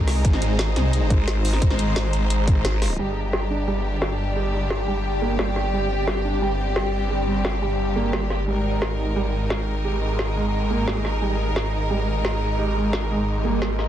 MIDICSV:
0, 0, Header, 1, 8, 480
1, 0, Start_track
1, 0, Tempo, 342857
1, 346, Time_signature, 4, 2, 24, 8
1, 19436, End_track
2, 0, Start_track
2, 0, Title_t, "Ambient pad"
2, 0, Program_c, 0, 92
2, 0, Note_on_c, 0, 68, 80
2, 0, Note_on_c, 0, 75, 71
2, 0, Note_on_c, 0, 82, 84
2, 4184, Note_on_c, 0, 67, 83
2, 4187, Note_off_c, 0, 68, 0
2, 4187, Note_off_c, 0, 75, 0
2, 4317, Note_on_c, 0, 74, 85
2, 4950, Note_off_c, 0, 82, 0
2, 4992, Note_on_c, 0, 79, 90
2, 11865, Note_off_c, 0, 67, 0
2, 11865, Note_off_c, 0, 74, 0
2, 11866, Note_on_c, 0, 68, 82
2, 12196, Note_on_c, 0, 75, 91
2, 12462, Note_on_c, 0, 82, 72
2, 13479, Note_off_c, 0, 79, 0
2, 19436, Note_off_c, 0, 68, 0
2, 19436, Note_off_c, 0, 75, 0
2, 19436, Note_off_c, 0, 82, 0
2, 19436, End_track
3, 0, Start_track
3, 0, Title_t, "String section"
3, 0, Program_c, 1, 48
3, 0, Note_on_c, 1, 56, 82
3, 0, Note_on_c, 1, 63, 72
3, 0, Note_on_c, 1, 70, 86
3, 307, Note_off_c, 1, 70, 0
3, 346, Note_on_c, 1, 72, 88
3, 4129, Note_off_c, 1, 56, 0
3, 4129, Note_off_c, 1, 63, 0
3, 4148, Note_off_c, 1, 72, 0
3, 4186, Note_on_c, 1, 55, 74
3, 4186, Note_on_c, 1, 62, 70
3, 4186, Note_on_c, 1, 67, 87
3, 7987, Note_off_c, 1, 62, 0
3, 8026, Note_on_c, 1, 60, 71
3, 11810, Note_off_c, 1, 55, 0
3, 11810, Note_off_c, 1, 67, 0
3, 11827, Note_off_c, 1, 60, 0
3, 11866, Note_on_c, 1, 56, 77
3, 11867, Note_on_c, 1, 63, 72
3, 11867, Note_on_c, 1, 70, 86
3, 19436, Note_off_c, 1, 56, 0
3, 19436, Note_off_c, 1, 63, 0
3, 19436, Note_off_c, 1, 70, 0
3, 19436, End_track
4, 0, Start_track
4, 0, Title_t, "Felt piano"
4, 0, Program_c, 2, 0
4, 4185, Note_on_c, 2, 55, 76
4, 4339, Note_off_c, 2, 55, 0
4, 4904, Note_on_c, 2, 62, 71
4, 5059, Note_off_c, 2, 62, 0
4, 5144, Note_on_c, 2, 55, 94
4, 5237, Note_off_c, 2, 55, 0
4, 6106, Note_on_c, 2, 67, 78
4, 6260, Note_off_c, 2, 67, 0
4, 6345, Note_on_c, 2, 55, 68
4, 6500, Note_off_c, 2, 55, 0
4, 6824, Note_on_c, 2, 55, 94
4, 6917, Note_off_c, 2, 55, 0
4, 7305, Note_on_c, 2, 58, 95
4, 7533, Note_off_c, 2, 58, 0
4, 7545, Note_on_c, 2, 55, 73
4, 7638, Note_off_c, 2, 55, 0
4, 8025, Note_on_c, 2, 55, 74
4, 8179, Note_off_c, 2, 55, 0
4, 8744, Note_on_c, 2, 62, 69
4, 8899, Note_off_c, 2, 62, 0
4, 8985, Note_on_c, 2, 55, 96
4, 9078, Note_off_c, 2, 55, 0
4, 9945, Note_on_c, 2, 67, 77
4, 10099, Note_off_c, 2, 67, 0
4, 10184, Note_on_c, 2, 55, 68
4, 10339, Note_off_c, 2, 55, 0
4, 10665, Note_on_c, 2, 55, 96
4, 10758, Note_off_c, 2, 55, 0
4, 11144, Note_on_c, 2, 58, 103
4, 11373, Note_off_c, 2, 58, 0
4, 11384, Note_on_c, 2, 55, 73
4, 11477, Note_off_c, 2, 55, 0
4, 11864, Note_on_c, 2, 55, 77
4, 12019, Note_off_c, 2, 55, 0
4, 12584, Note_on_c, 2, 63, 71
4, 12739, Note_off_c, 2, 63, 0
4, 12824, Note_on_c, 2, 55, 103
4, 12917, Note_off_c, 2, 55, 0
4, 13784, Note_on_c, 2, 67, 79
4, 13939, Note_off_c, 2, 67, 0
4, 14024, Note_on_c, 2, 56, 70
4, 14179, Note_off_c, 2, 56, 0
4, 14505, Note_on_c, 2, 56, 98
4, 14598, Note_off_c, 2, 56, 0
4, 14985, Note_on_c, 2, 58, 101
4, 15213, Note_off_c, 2, 58, 0
4, 15225, Note_on_c, 2, 55, 75
4, 15318, Note_off_c, 2, 55, 0
4, 15705, Note_on_c, 2, 55, 77
4, 15859, Note_off_c, 2, 55, 0
4, 16425, Note_on_c, 2, 63, 72
4, 16579, Note_off_c, 2, 63, 0
4, 16664, Note_on_c, 2, 55, 98
4, 16757, Note_off_c, 2, 55, 0
4, 17624, Note_on_c, 2, 67, 77
4, 17779, Note_off_c, 2, 67, 0
4, 17864, Note_on_c, 2, 56, 73
4, 18019, Note_off_c, 2, 56, 0
4, 18344, Note_on_c, 2, 56, 97
4, 18437, Note_off_c, 2, 56, 0
4, 18824, Note_on_c, 2, 58, 98
4, 19052, Note_off_c, 2, 58, 0
4, 19064, Note_on_c, 2, 55, 79
4, 19157, Note_off_c, 2, 55, 0
4, 19436, End_track
5, 0, Start_track
5, 0, Title_t, "Detuned saw bass"
5, 0, Program_c, 3, 39
5, 0, Note_on_c, 3, 36, 98
5, 326, Note_off_c, 3, 36, 0
5, 346, Note_on_c, 3, 32, 104
5, 1046, Note_off_c, 3, 32, 0
5, 1066, Note_on_c, 3, 36, 103
5, 1526, Note_off_c, 3, 36, 0
5, 2265, Note_on_c, 3, 32, 101
5, 2966, Note_off_c, 3, 32, 0
5, 2985, Note_on_c, 3, 32, 102
5, 3686, Note_off_c, 3, 32, 0
5, 4186, Note_on_c, 3, 31, 91
5, 11842, Note_off_c, 3, 31, 0
5, 11865, Note_on_c, 3, 32, 88
5, 19436, Note_off_c, 3, 32, 0
5, 19436, End_track
6, 0, Start_track
6, 0, Title_t, "Wobble bass"
6, 0, Program_c, 4, 39
6, 1545, Note_on_c, 4, 32, 100
6, 2246, Note_off_c, 4, 32, 0
6, 3705, Note_on_c, 4, 32, 92
6, 4166, Note_off_c, 4, 32, 0
6, 19436, End_track
7, 0, Start_track
7, 0, Title_t, "Swell"
7, 0, Program_c, 5, 103
7, 18585, Note_on_c, 5, 60, 75
7, 19436, Note_off_c, 5, 60, 0
7, 19436, End_track
8, 0, Start_track
8, 0, Title_t, "Drums"
8, 106, Note_on_c, 9, 38, 35
8, 106, Note_on_c, 9, 46, 77
8, 246, Note_off_c, 9, 38, 0
8, 246, Note_off_c, 9, 46, 0
8, 345, Note_on_c, 9, 36, 113
8, 346, Note_on_c, 9, 42, 95
8, 467, Note_on_c, 9, 40, 37
8, 485, Note_off_c, 9, 36, 0
8, 486, Note_off_c, 9, 42, 0
8, 586, Note_on_c, 9, 42, 72
8, 607, Note_off_c, 9, 40, 0
8, 726, Note_off_c, 9, 42, 0
8, 826, Note_on_c, 9, 38, 120
8, 826, Note_on_c, 9, 42, 99
8, 966, Note_off_c, 9, 38, 0
8, 966, Note_off_c, 9, 42, 0
8, 1067, Note_on_c, 9, 40, 49
8, 1067, Note_on_c, 9, 42, 69
8, 1207, Note_off_c, 9, 40, 0
8, 1207, Note_off_c, 9, 42, 0
8, 1306, Note_on_c, 9, 42, 101
8, 1446, Note_off_c, 9, 42, 0
8, 1545, Note_on_c, 9, 36, 105
8, 1546, Note_on_c, 9, 42, 67
8, 1685, Note_off_c, 9, 36, 0
8, 1686, Note_off_c, 9, 42, 0
8, 1787, Note_on_c, 9, 38, 122
8, 1787, Note_on_c, 9, 42, 98
8, 1927, Note_off_c, 9, 38, 0
8, 1927, Note_off_c, 9, 42, 0
8, 2027, Note_on_c, 9, 46, 78
8, 2146, Note_on_c, 9, 40, 37
8, 2167, Note_off_c, 9, 46, 0
8, 2265, Note_on_c, 9, 36, 110
8, 2266, Note_on_c, 9, 42, 96
8, 2286, Note_off_c, 9, 40, 0
8, 2386, Note_on_c, 9, 40, 38
8, 2405, Note_off_c, 9, 36, 0
8, 2406, Note_off_c, 9, 42, 0
8, 2506, Note_on_c, 9, 42, 69
8, 2526, Note_off_c, 9, 40, 0
8, 2646, Note_off_c, 9, 42, 0
8, 2745, Note_on_c, 9, 38, 118
8, 2745, Note_on_c, 9, 42, 97
8, 2885, Note_off_c, 9, 38, 0
8, 2885, Note_off_c, 9, 42, 0
8, 2985, Note_on_c, 9, 42, 72
8, 3125, Note_off_c, 9, 42, 0
8, 3225, Note_on_c, 9, 42, 104
8, 3365, Note_off_c, 9, 42, 0
8, 3465, Note_on_c, 9, 36, 106
8, 3466, Note_on_c, 9, 42, 72
8, 3605, Note_off_c, 9, 36, 0
8, 3606, Note_off_c, 9, 42, 0
8, 3706, Note_on_c, 9, 38, 124
8, 3706, Note_on_c, 9, 42, 105
8, 3846, Note_off_c, 9, 38, 0
8, 3846, Note_off_c, 9, 42, 0
8, 3947, Note_on_c, 9, 38, 34
8, 3947, Note_on_c, 9, 46, 77
8, 4087, Note_off_c, 9, 38, 0
8, 4087, Note_off_c, 9, 46, 0
8, 4666, Note_on_c, 9, 38, 114
8, 4806, Note_off_c, 9, 38, 0
8, 5625, Note_on_c, 9, 38, 112
8, 5765, Note_off_c, 9, 38, 0
8, 6586, Note_on_c, 9, 38, 116
8, 6726, Note_off_c, 9, 38, 0
8, 7545, Note_on_c, 9, 38, 114
8, 7685, Note_off_c, 9, 38, 0
8, 7786, Note_on_c, 9, 38, 33
8, 7926, Note_off_c, 9, 38, 0
8, 8505, Note_on_c, 9, 38, 124
8, 8645, Note_off_c, 9, 38, 0
8, 9465, Note_on_c, 9, 38, 121
8, 9605, Note_off_c, 9, 38, 0
8, 10426, Note_on_c, 9, 38, 114
8, 10566, Note_off_c, 9, 38, 0
8, 11385, Note_on_c, 9, 38, 116
8, 11525, Note_off_c, 9, 38, 0
8, 11626, Note_on_c, 9, 38, 34
8, 11766, Note_off_c, 9, 38, 0
8, 12345, Note_on_c, 9, 38, 107
8, 12485, Note_off_c, 9, 38, 0
8, 13305, Note_on_c, 9, 38, 118
8, 13445, Note_off_c, 9, 38, 0
8, 14266, Note_on_c, 9, 38, 110
8, 14406, Note_off_c, 9, 38, 0
8, 15226, Note_on_c, 9, 38, 114
8, 15366, Note_off_c, 9, 38, 0
8, 15467, Note_on_c, 9, 38, 33
8, 15607, Note_off_c, 9, 38, 0
8, 16186, Note_on_c, 9, 38, 108
8, 16326, Note_off_c, 9, 38, 0
8, 17145, Note_on_c, 9, 38, 113
8, 17285, Note_off_c, 9, 38, 0
8, 18105, Note_on_c, 9, 38, 111
8, 18245, Note_off_c, 9, 38, 0
8, 19065, Note_on_c, 9, 38, 115
8, 19205, Note_off_c, 9, 38, 0
8, 19305, Note_on_c, 9, 38, 32
8, 19436, Note_off_c, 9, 38, 0
8, 19436, End_track
0, 0, End_of_file